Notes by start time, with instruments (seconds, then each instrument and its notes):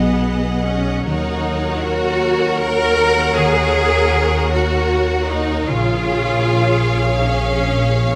Already playing: double bass section B1, harp B2 F#3 D#4 F#4 G#4 D#5 G#5, cello section B3, french horn section F#4 D#5, viola section G#4, violin section D#5 F#5
0.10 harp F#5
0.28 harp D#5
0.48 harp G#4
0.67 cello section C#4, harp F#4
0.87 harp D#4
1.04 double bass section D#2, harp D#3, cello section D#4, french horn section F#4 C#5, viola section A#4, violin section C#5 F#5
1.25 harp C#4
1.45 harp F#4
1.64 harp A#4
1.83 cello section F#4, harp C#5
2.04 harp F#5
2.24 harp A#5
2.43 harp F#5
2.61 cello section A#4, harp C#5
3.01 harp F#4
3.19 harp C#4
3.38 harp D#3, cello section G#4
3.76 harp F#4
3.96 harp A#4
4.14 harp C#5
4.33 harp F#5
4.52 cello section F#4, harp A#5
4.71 harp F#5
4.90 harp C#5
5.10 harp A#4
5.30 cello section D#4, harp F#4
5.49 harp C#4
5.67 double bass section A#1, harp C#3, cello section F4, viola section G#4, violin section C#5 F5, french horn section C#5 F5
5.87 harp C#4
6.26 harp G#4
6.46 harp C#5
6.87 harp G#5
7.05 harp F5
7.26 cello section C#4, harp C#5
7.46 harp G#4
7.67 harp F4
7.87 harp C#4
8.10 cello section B3